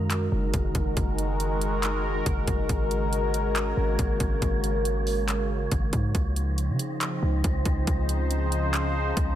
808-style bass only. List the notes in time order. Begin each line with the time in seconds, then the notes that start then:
Already playing: F#2
0.32 F#1
0.54 F#1
0.75 F#1
0.97 F#1
2.26 F#1
2.48 F#1
2.69 G#1
3.77 G#1
3.99 G#1
4.20 G#1
4.42 G#1
5.72 G#1
5.93 G#2
6.15 C#2
6.69 C#3
7.23 C#2
7.44 C#2
7.66 C#2
7.87 C#2
9.17 C#2